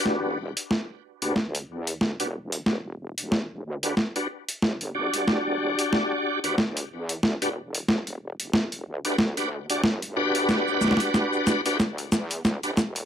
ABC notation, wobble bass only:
X:1
M:4/4
L:1/16
Q:"Swing 16ths" 1/4=92
K:Em
V:1 name="Wobble bass" clef=bass
E,,,3 z4 D,,3 E,,2 D,, E,,,3 | E,,,3 E,,,3 D,,2 z4 G,,,4 | E,,,3 z4 D,,3 E,,2 D,, E,,,3 | E,,,3 E,,,3 D,,2 D,,3 D,, G,,,4 |
E,,,3 z4 D,,3 E,,2 D,, E,,,3 |]